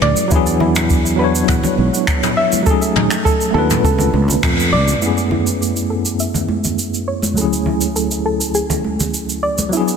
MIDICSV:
0, 0, Header, 1, 5, 480
1, 0, Start_track
1, 0, Key_signature, 3, "minor"
1, 0, Tempo, 588235
1, 257, Time_signature, 4, 2, 24, 8
1, 8133, End_track
2, 0, Start_track
2, 0, Title_t, "Synth arpeggio sound"
2, 0, Program_c, 0, 84
2, 16, Note_on_c, 0, 74, 101
2, 234, Note_off_c, 0, 74, 0
2, 256, Note_on_c, 0, 64, 85
2, 391, Note_off_c, 0, 64, 0
2, 494, Note_on_c, 0, 64, 99
2, 712, Note_off_c, 0, 64, 0
2, 971, Note_on_c, 0, 71, 95
2, 1203, Note_off_c, 0, 71, 0
2, 1214, Note_on_c, 0, 78, 81
2, 1350, Note_off_c, 0, 78, 0
2, 1933, Note_on_c, 0, 76, 94
2, 2152, Note_off_c, 0, 76, 0
2, 2172, Note_on_c, 0, 69, 85
2, 2392, Note_off_c, 0, 69, 0
2, 2413, Note_on_c, 0, 63, 70
2, 2632, Note_off_c, 0, 63, 0
2, 2651, Note_on_c, 0, 69, 100
2, 2871, Note_off_c, 0, 69, 0
2, 2890, Note_on_c, 0, 69, 102
2, 3122, Note_off_c, 0, 69, 0
2, 3137, Note_on_c, 0, 69, 103
2, 3366, Note_off_c, 0, 69, 0
2, 3856, Note_on_c, 0, 74, 106
2, 4073, Note_off_c, 0, 74, 0
2, 4096, Note_on_c, 0, 64, 79
2, 4231, Note_off_c, 0, 64, 0
2, 4338, Note_on_c, 0, 64, 86
2, 4554, Note_off_c, 0, 64, 0
2, 4816, Note_on_c, 0, 69, 96
2, 5045, Note_off_c, 0, 69, 0
2, 5058, Note_on_c, 0, 76, 81
2, 5192, Note_off_c, 0, 76, 0
2, 5775, Note_on_c, 0, 73, 90
2, 5993, Note_off_c, 0, 73, 0
2, 6018, Note_on_c, 0, 69, 75
2, 6235, Note_off_c, 0, 69, 0
2, 6258, Note_on_c, 0, 64, 64
2, 6475, Note_off_c, 0, 64, 0
2, 6493, Note_on_c, 0, 69, 90
2, 6712, Note_off_c, 0, 69, 0
2, 6736, Note_on_c, 0, 69, 97
2, 6965, Note_off_c, 0, 69, 0
2, 6973, Note_on_c, 0, 68, 97
2, 7204, Note_off_c, 0, 68, 0
2, 7693, Note_on_c, 0, 74, 98
2, 7912, Note_off_c, 0, 74, 0
2, 7937, Note_on_c, 0, 64, 83
2, 8072, Note_off_c, 0, 64, 0
2, 8133, End_track
3, 0, Start_track
3, 0, Title_t, "Tine electric piano"
3, 0, Program_c, 1, 4
3, 0, Control_c, 1, 64, 127
3, 0, Note_on_c, 1, 54, 84
3, 0, Note_on_c, 1, 57, 70
3, 0, Note_on_c, 1, 61, 74
3, 0, Note_on_c, 1, 64, 68
3, 0, Note_on_c, 1, 71, 90
3, 214, Note_off_c, 1, 54, 0
3, 221, Note_off_c, 1, 57, 0
3, 224, Note_on_c, 1, 54, 91
3, 229, Note_off_c, 1, 61, 0
3, 238, Note_off_c, 1, 64, 0
3, 241, Note_on_c, 1, 59, 81
3, 245, Note_off_c, 1, 71, 0
3, 257, Note_on_c, 1, 62, 80
3, 267, Control_c, 1, 64, 0
3, 273, Note_on_c, 1, 64, 84
3, 290, Note_on_c, 1, 68, 100
3, 408, Control_c, 1, 64, 127
3, 933, Note_off_c, 1, 54, 0
3, 941, Note_off_c, 1, 59, 0
3, 946, Note_on_c, 1, 54, 83
3, 949, Note_off_c, 1, 62, 0
3, 957, Note_off_c, 1, 64, 0
3, 961, Note_on_c, 1, 59, 72
3, 966, Note_off_c, 1, 68, 0
3, 978, Note_on_c, 1, 62, 76
3, 996, Note_on_c, 1, 64, 76
3, 1012, Note_on_c, 1, 73, 88
3, 2131, Note_off_c, 1, 54, 0
3, 2140, Note_on_c, 1, 54, 88
3, 2141, Note_off_c, 1, 59, 0
3, 2150, Note_off_c, 1, 62, 0
3, 2157, Note_on_c, 1, 57, 81
3, 2159, Note_off_c, 1, 64, 0
3, 2167, Note_off_c, 1, 73, 0
3, 2172, Note_on_c, 1, 61, 83
3, 2189, Control_c, 1, 64, 0
3, 2190, Note_on_c, 1, 63, 80
3, 2205, Note_on_c, 1, 68, 100
3, 2345, Control_c, 1, 64, 127
3, 2850, Note_off_c, 1, 57, 0
3, 2851, Note_off_c, 1, 54, 0
3, 2860, Note_on_c, 1, 57, 81
3, 2867, Note_off_c, 1, 61, 0
3, 2876, Note_off_c, 1, 63, 0
3, 2878, Note_on_c, 1, 59, 76
3, 2884, Note_off_c, 1, 68, 0
3, 2892, Note_on_c, 1, 62, 73
3, 2908, Note_on_c, 1, 65, 74
3, 2924, Note_on_c, 1, 71, 88
3, 3148, Control_c, 1, 64, 0
3, 3302, Control_c, 1, 64, 127
3, 4051, Note_off_c, 1, 57, 0
3, 4060, Note_off_c, 1, 59, 0
3, 4064, Note_on_c, 1, 42, 65
3, 4067, Note_off_c, 1, 62, 0
3, 4075, Note_off_c, 1, 65, 0
3, 4077, Note_on_c, 1, 57, 60
3, 4083, Note_off_c, 1, 71, 0
3, 4092, Note_on_c, 1, 59, 64
3, 4106, Note_on_c, 1, 61, 61
3, 4109, Control_c, 1, 64, 0
3, 4117, Note_on_c, 1, 64, 60
3, 4129, Note_on_c, 1, 68, 71
3, 4267, Control_c, 1, 64, 127
3, 5973, Note_off_c, 1, 42, 0
3, 5979, Note_off_c, 1, 57, 0
3, 5984, Note_on_c, 1, 38, 72
3, 5987, Note_off_c, 1, 59, 0
3, 5994, Note_off_c, 1, 61, 0
3, 5997, Note_on_c, 1, 54, 65
3, 6000, Note_off_c, 1, 64, 0
3, 6005, Note_off_c, 1, 68, 0
3, 6008, Note_on_c, 1, 57, 60
3, 6022, Note_on_c, 1, 61, 63
3, 6028, Control_c, 1, 64, 0
3, 6036, Note_on_c, 1, 64, 62
3, 6050, Note_on_c, 1, 68, 72
3, 6157, Control_c, 1, 64, 127
3, 7893, Note_off_c, 1, 38, 0
3, 7899, Note_off_c, 1, 54, 0
3, 7905, Note_off_c, 1, 57, 0
3, 7910, Note_on_c, 1, 54, 69
3, 7912, Note_off_c, 1, 61, 0
3, 7919, Note_off_c, 1, 64, 0
3, 7925, Note_on_c, 1, 59, 61
3, 7926, Note_off_c, 1, 68, 0
3, 7939, Note_on_c, 1, 62, 62
3, 7947, Control_c, 1, 64, 0
3, 7955, Note_on_c, 1, 64, 67
3, 7972, Note_on_c, 1, 68, 81
3, 8083, Control_c, 1, 64, 127
3, 8133, Note_off_c, 1, 54, 0
3, 8133, Note_off_c, 1, 59, 0
3, 8133, Note_off_c, 1, 62, 0
3, 8133, Note_off_c, 1, 64, 0
3, 8133, Note_off_c, 1, 68, 0
3, 8133, End_track
4, 0, Start_track
4, 0, Title_t, "Fretless electric bass"
4, 0, Program_c, 2, 35
4, 14, Note_on_c, 2, 38, 85
4, 100, Note_off_c, 2, 38, 0
4, 257, Note_on_c, 2, 40, 98
4, 1157, Note_off_c, 2, 40, 0
4, 1213, Note_on_c, 2, 40, 90
4, 1300, Note_off_c, 2, 40, 0
4, 1455, Note_on_c, 2, 35, 93
4, 1541, Note_off_c, 2, 35, 0
4, 2891, Note_on_c, 2, 39, 92
4, 3059, Note_off_c, 2, 39, 0
4, 3133, Note_on_c, 2, 37, 93
4, 3370, Note_off_c, 2, 37, 0
4, 3375, Note_on_c, 2, 37, 101
4, 3542, Note_off_c, 2, 37, 0
4, 3615, Note_on_c, 2, 41, 91
4, 3856, Note_on_c, 2, 37, 81
4, 3868, Note_off_c, 2, 41, 0
4, 4022, Note_off_c, 2, 37, 0
4, 8133, End_track
5, 0, Start_track
5, 0, Title_t, "Drums"
5, 14, Note_on_c, 9, 45, 75
5, 95, Note_off_c, 9, 45, 0
5, 130, Note_on_c, 9, 63, 82
5, 135, Note_on_c, 9, 82, 75
5, 136, Note_on_c, 9, 62, 44
5, 211, Note_off_c, 9, 63, 0
5, 217, Note_off_c, 9, 82, 0
5, 218, Note_off_c, 9, 62, 0
5, 253, Note_on_c, 9, 82, 67
5, 257, Note_on_c, 9, 36, 102
5, 334, Note_off_c, 9, 82, 0
5, 339, Note_off_c, 9, 36, 0
5, 378, Note_on_c, 9, 82, 48
5, 460, Note_off_c, 9, 82, 0
5, 491, Note_on_c, 9, 64, 89
5, 573, Note_off_c, 9, 64, 0
5, 616, Note_on_c, 9, 62, 54
5, 618, Note_on_c, 9, 82, 76
5, 620, Note_on_c, 9, 45, 76
5, 623, Note_on_c, 9, 26, 73
5, 698, Note_off_c, 9, 62, 0
5, 699, Note_off_c, 9, 82, 0
5, 702, Note_off_c, 9, 45, 0
5, 704, Note_off_c, 9, 26, 0
5, 732, Note_on_c, 9, 82, 62
5, 735, Note_on_c, 9, 36, 91
5, 814, Note_off_c, 9, 82, 0
5, 817, Note_off_c, 9, 36, 0
5, 864, Note_on_c, 9, 82, 55
5, 945, Note_off_c, 9, 82, 0
5, 1104, Note_on_c, 9, 82, 78
5, 1185, Note_off_c, 9, 82, 0
5, 1208, Note_on_c, 9, 45, 80
5, 1214, Note_on_c, 9, 36, 97
5, 1219, Note_on_c, 9, 82, 64
5, 1290, Note_off_c, 9, 45, 0
5, 1296, Note_off_c, 9, 36, 0
5, 1301, Note_off_c, 9, 82, 0
5, 1332, Note_on_c, 9, 62, 73
5, 1334, Note_on_c, 9, 64, 94
5, 1339, Note_on_c, 9, 82, 49
5, 1414, Note_off_c, 9, 62, 0
5, 1416, Note_off_c, 9, 64, 0
5, 1421, Note_off_c, 9, 82, 0
5, 1452, Note_on_c, 9, 63, 73
5, 1533, Note_off_c, 9, 63, 0
5, 1586, Note_on_c, 9, 82, 66
5, 1668, Note_off_c, 9, 82, 0
5, 1691, Note_on_c, 9, 26, 61
5, 1693, Note_on_c, 9, 36, 97
5, 1697, Note_on_c, 9, 82, 58
5, 1773, Note_off_c, 9, 26, 0
5, 1775, Note_off_c, 9, 36, 0
5, 1779, Note_off_c, 9, 82, 0
5, 1821, Note_on_c, 9, 45, 80
5, 1824, Note_on_c, 9, 82, 48
5, 1902, Note_off_c, 9, 45, 0
5, 1905, Note_off_c, 9, 82, 0
5, 2057, Note_on_c, 9, 62, 48
5, 2058, Note_on_c, 9, 82, 75
5, 2063, Note_on_c, 9, 63, 79
5, 2139, Note_off_c, 9, 62, 0
5, 2140, Note_off_c, 9, 82, 0
5, 2144, Note_off_c, 9, 63, 0
5, 2173, Note_on_c, 9, 36, 97
5, 2173, Note_on_c, 9, 82, 74
5, 2255, Note_off_c, 9, 36, 0
5, 2255, Note_off_c, 9, 82, 0
5, 2300, Note_on_c, 9, 82, 46
5, 2381, Note_off_c, 9, 82, 0
5, 2414, Note_on_c, 9, 45, 82
5, 2417, Note_on_c, 9, 64, 86
5, 2495, Note_off_c, 9, 45, 0
5, 2499, Note_off_c, 9, 64, 0
5, 2534, Note_on_c, 9, 26, 64
5, 2538, Note_on_c, 9, 62, 49
5, 2538, Note_on_c, 9, 82, 79
5, 2615, Note_off_c, 9, 26, 0
5, 2619, Note_off_c, 9, 82, 0
5, 2620, Note_off_c, 9, 62, 0
5, 2655, Note_on_c, 9, 36, 98
5, 2662, Note_on_c, 9, 82, 57
5, 2736, Note_off_c, 9, 36, 0
5, 2743, Note_off_c, 9, 82, 0
5, 2781, Note_on_c, 9, 82, 49
5, 2862, Note_off_c, 9, 82, 0
5, 3022, Note_on_c, 9, 82, 77
5, 3023, Note_on_c, 9, 45, 77
5, 3104, Note_off_c, 9, 82, 0
5, 3105, Note_off_c, 9, 45, 0
5, 3135, Note_on_c, 9, 36, 93
5, 3142, Note_on_c, 9, 82, 55
5, 3217, Note_off_c, 9, 36, 0
5, 3224, Note_off_c, 9, 82, 0
5, 3250, Note_on_c, 9, 64, 94
5, 3264, Note_on_c, 9, 82, 41
5, 3332, Note_off_c, 9, 64, 0
5, 3345, Note_off_c, 9, 82, 0
5, 3375, Note_on_c, 9, 63, 83
5, 3456, Note_off_c, 9, 63, 0
5, 3493, Note_on_c, 9, 63, 84
5, 3493, Note_on_c, 9, 64, 74
5, 3497, Note_on_c, 9, 62, 65
5, 3511, Note_on_c, 9, 82, 73
5, 3575, Note_off_c, 9, 63, 0
5, 3575, Note_off_c, 9, 64, 0
5, 3578, Note_off_c, 9, 62, 0
5, 3593, Note_off_c, 9, 82, 0
5, 3615, Note_on_c, 9, 36, 97
5, 3616, Note_on_c, 9, 26, 72
5, 3617, Note_on_c, 9, 82, 60
5, 3621, Note_on_c, 9, 45, 76
5, 3697, Note_off_c, 9, 26, 0
5, 3697, Note_off_c, 9, 36, 0
5, 3699, Note_off_c, 9, 82, 0
5, 3703, Note_off_c, 9, 45, 0
5, 3747, Note_on_c, 9, 62, 38
5, 3751, Note_on_c, 9, 82, 51
5, 3829, Note_off_c, 9, 62, 0
5, 3833, Note_off_c, 9, 82, 0
5, 3980, Note_on_c, 9, 62, 56
5, 3982, Note_on_c, 9, 82, 69
5, 3983, Note_on_c, 9, 63, 76
5, 4061, Note_off_c, 9, 62, 0
5, 4064, Note_off_c, 9, 82, 0
5, 4065, Note_off_c, 9, 63, 0
5, 4096, Note_on_c, 9, 82, 61
5, 4178, Note_off_c, 9, 82, 0
5, 4223, Note_on_c, 9, 82, 41
5, 4305, Note_off_c, 9, 82, 0
5, 4333, Note_on_c, 9, 64, 77
5, 4414, Note_off_c, 9, 64, 0
5, 4462, Note_on_c, 9, 62, 45
5, 4462, Note_on_c, 9, 82, 58
5, 4544, Note_off_c, 9, 62, 0
5, 4544, Note_off_c, 9, 82, 0
5, 4589, Note_on_c, 9, 82, 54
5, 4671, Note_off_c, 9, 82, 0
5, 4704, Note_on_c, 9, 82, 45
5, 4785, Note_off_c, 9, 82, 0
5, 4941, Note_on_c, 9, 82, 66
5, 5022, Note_off_c, 9, 82, 0
5, 5056, Note_on_c, 9, 82, 64
5, 5138, Note_off_c, 9, 82, 0
5, 5176, Note_on_c, 9, 64, 75
5, 5183, Note_on_c, 9, 82, 45
5, 5184, Note_on_c, 9, 62, 54
5, 5258, Note_off_c, 9, 64, 0
5, 5264, Note_off_c, 9, 82, 0
5, 5266, Note_off_c, 9, 62, 0
5, 5292, Note_on_c, 9, 63, 81
5, 5373, Note_off_c, 9, 63, 0
5, 5421, Note_on_c, 9, 82, 69
5, 5426, Note_on_c, 9, 64, 63
5, 5502, Note_off_c, 9, 82, 0
5, 5508, Note_off_c, 9, 64, 0
5, 5537, Note_on_c, 9, 82, 52
5, 5619, Note_off_c, 9, 82, 0
5, 5663, Note_on_c, 9, 82, 37
5, 5744, Note_off_c, 9, 82, 0
5, 5895, Note_on_c, 9, 62, 45
5, 5898, Note_on_c, 9, 63, 82
5, 5903, Note_on_c, 9, 82, 67
5, 5976, Note_off_c, 9, 62, 0
5, 5980, Note_off_c, 9, 63, 0
5, 5985, Note_off_c, 9, 82, 0
5, 6016, Note_on_c, 9, 82, 56
5, 6097, Note_off_c, 9, 82, 0
5, 6145, Note_on_c, 9, 82, 47
5, 6226, Note_off_c, 9, 82, 0
5, 6249, Note_on_c, 9, 64, 79
5, 6331, Note_off_c, 9, 64, 0
5, 6373, Note_on_c, 9, 82, 67
5, 6376, Note_on_c, 9, 62, 46
5, 6455, Note_off_c, 9, 82, 0
5, 6458, Note_off_c, 9, 62, 0
5, 6497, Note_on_c, 9, 82, 60
5, 6578, Note_off_c, 9, 82, 0
5, 6618, Note_on_c, 9, 82, 42
5, 6700, Note_off_c, 9, 82, 0
5, 6861, Note_on_c, 9, 82, 71
5, 6943, Note_off_c, 9, 82, 0
5, 6973, Note_on_c, 9, 82, 56
5, 7054, Note_off_c, 9, 82, 0
5, 7097, Note_on_c, 9, 64, 88
5, 7102, Note_on_c, 9, 82, 43
5, 7179, Note_off_c, 9, 64, 0
5, 7184, Note_off_c, 9, 82, 0
5, 7216, Note_on_c, 9, 63, 70
5, 7298, Note_off_c, 9, 63, 0
5, 7344, Note_on_c, 9, 82, 69
5, 7346, Note_on_c, 9, 64, 76
5, 7348, Note_on_c, 9, 62, 58
5, 7426, Note_off_c, 9, 82, 0
5, 7428, Note_off_c, 9, 64, 0
5, 7429, Note_off_c, 9, 62, 0
5, 7457, Note_on_c, 9, 82, 60
5, 7539, Note_off_c, 9, 82, 0
5, 7584, Note_on_c, 9, 82, 43
5, 7666, Note_off_c, 9, 82, 0
5, 7820, Note_on_c, 9, 82, 72
5, 7821, Note_on_c, 9, 63, 93
5, 7822, Note_on_c, 9, 62, 48
5, 7901, Note_off_c, 9, 82, 0
5, 7902, Note_off_c, 9, 63, 0
5, 7904, Note_off_c, 9, 62, 0
5, 7938, Note_on_c, 9, 82, 60
5, 8020, Note_off_c, 9, 82, 0
5, 8063, Note_on_c, 9, 82, 50
5, 8133, Note_off_c, 9, 82, 0
5, 8133, End_track
0, 0, End_of_file